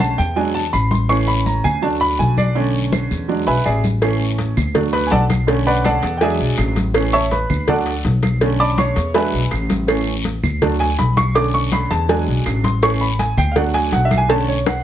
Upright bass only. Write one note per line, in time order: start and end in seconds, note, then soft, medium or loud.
0.00 0.13 B1 medium
0.19 0.70 E2 loud
0.73 1.59 A1 loud
1.64 2.15 D2 medium
2.19 3.05 B1 medium
3.11 3.45 E2 medium
3.47 3.64 B1 medium
3.65 4.51 A1 medium
4.57 5.08 D2 medium
5.12 5.97 B1 medium
6.03 6.37 E2 loud
6.39 6.57 B1 medium
6.58 7.44 A1 medium
7.50 8.01 D2 loud
8.05 8.91 B1 loud
8.96 9.31 E2 loud
9.33 9.50 B1 medium
9.52 10.38 A1 medium
10.43 10.95 D2 loud
10.99 11.85 B1 medium
11.91 12.25 E2 loud
12.27 12.44 B1 medium
12.46 13.32 A1 medium
13.37 13.89 D2 loud
13.93 14.79 B1 medium